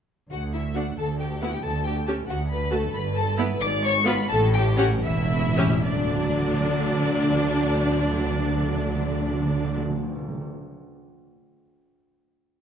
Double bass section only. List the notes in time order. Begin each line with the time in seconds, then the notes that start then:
0.31 D2
0.98 D2
1.64 D2
2.28 D2
2.94 G1
3.60 G#1
4.30 A1
5.04 E1
5.85 D2